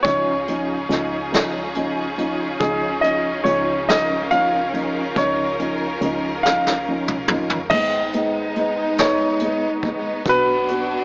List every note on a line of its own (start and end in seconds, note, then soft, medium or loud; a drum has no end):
0.00 7.66 D#4 medium
0.00 1.28 C#5 medium
0.04 0.86 C#2 loud
0.04 7.67 C#3 medium
0.04 0.31 F3 medium
0.04 7.67 C#4 medium
0.04 0.31 C#4 medium
0.04 0.31 D#4 medium
0.04 7.67 F4 medium
0.04 3.84 G#4 medium
0.04 kick loud
0.04 closed hi-hat medium
0.48 0.74 F3 medium
0.48 0.74 C#4 medium
0.48 0.74 D#4 medium
0.48 closed hi-hat soft
0.89 2.56 C#2 loud
0.89 1.16 F3 medium
0.89 1.16 C#4 medium
0.89 1.16 D#4 medium
0.89 snare soft
0.89 closed hi-hat medium
1.32 1.59 F3 medium
1.32 1.59 C#4 medium
1.32 1.59 D#4 medium
1.32 snare medium
1.32 closed hi-hat medium
1.75 2.02 F3 medium
1.75 2.02 C#4 medium
1.75 2.02 D#4 medium
1.75 closed hi-hat soft
2.18 2.44 F3 medium
2.18 2.45 C#4 medium
2.18 2.44 D#4 medium
2.18 closed hi-hat soft
2.60 3.42 C#2 loud
2.60 2.87 F3 medium
2.60 2.87 C#4 medium
2.60 2.87 D#4 medium
2.60 3.04 G#4 medium
2.60 kick loud
2.60 closed hi-hat medium
3.02 3.29 F3 medium
3.02 3.30 C#4 medium
3.02 3.30 D#4 medium
3.02 3.46 D#5 medium
3.02 closed hi-hat soft
3.44 5.12 C#2 loud
3.44 3.72 F3 medium
3.44 3.72 C#4 medium
3.44 3.72 D#4 medium
3.44 3.85 C#5 medium
3.44 closed hi-hat medium
3.88 4.14 F3 medium
3.88 4.15 C#4 medium
3.88 4.15 D#4 medium
3.88 7.67 A#4 medium
3.88 4.28 D#5 medium
3.88 snare medium
3.88 closed hi-hat medium
4.31 4.57 F3 medium
4.31 4.57 C#4 medium
4.31 4.58 D#4 medium
4.31 5.19 F5 loud
4.31 closed hi-hat soft
4.73 5.00 F3 medium
4.73 5.00 C#4 medium
4.73 5.00 D#4 medium
4.73 closed hi-hat soft
5.16 5.97 C#2 loud
5.16 5.43 F3 medium
5.16 5.43 C#4 medium
5.16 5.43 D#4 loud
5.16 5.98 C#5 medium
5.16 kick loud
5.16 closed hi-hat medium
5.59 5.85 F3 medium
5.59 5.85 C#4 medium
5.59 5.85 D#4 medium
5.59 closed hi-hat soft
6.01 7.67 C#2 loud
6.01 6.28 F3 medium
6.01 6.28 C#4 medium
6.01 6.28 D#4 medium
6.01 closed hi-hat medium
6.43 6.70 F3 medium
6.43 6.71 C#4 medium
6.43 6.71 D#4 medium
6.43 7.35 F5 medium
6.43 snare soft
6.66 snare soft
6.88 7.13 F3 medium
6.88 7.13 C#4 medium
6.88 7.13 D#4 medium
7.08 mid tom medium
7.28 7.55 F3 medium
7.28 7.56 C#4 medium
7.28 7.56 D#4 medium
7.28 mid tom medium
7.49 floor tom medium
7.70 9.85 G#1 medium
7.70 10.23 G#3 medium
7.70 7.98 G#3 medium
7.70 11.04 B3 medium
7.70 7.98 B3 medium
7.70 10.22 D#4 medium
7.70 10.24 D#4 medium
7.70 7.98 D#4 medium
7.70 8.51 D#5 loud
7.70 kick loud
7.70 crash medium
8.13 8.40 G#3 medium
8.13 8.40 B3 medium
8.13 8.40 D#4 medium
8.13 closed hi-hat medium
8.56 8.82 G#3 medium
8.56 8.83 B3 medium
8.56 8.83 D#4 medium
8.56 closed hi-hat soft
8.98 9.25 G#3 medium
8.98 9.25 B3 medium
8.98 9.25 D#4 medium
8.98 10.22 C#5 medium
8.98 snare medium
8.98 closed hi-hat medium
9.39 9.67 G#3 medium
9.39 9.68 B3 medium
9.39 9.68 D#4 medium
9.39 closed hi-hat soft
9.83 10.23 A#1 medium
9.83 10.10 G#3 medium
9.83 10.10 B3 medium
9.83 10.10 D#4 medium
9.83 kick medium
9.83 closed hi-hat soft
10.25 11.04 B1 loud
10.25 11.04 F#3 medium
10.25 10.52 B3 medium
10.25 11.04 D4 medium
10.25 10.53 D4 medium
10.25 11.04 F#4 loud
10.25 10.53 F#4 loud
10.25 kick loud
10.25 closed hi-hat medium
10.29 11.04 B4 loud
10.68 10.95 B3 medium
10.68 10.95 D4 medium
10.68 10.95 F#4 medium
10.68 closed hi-hat medium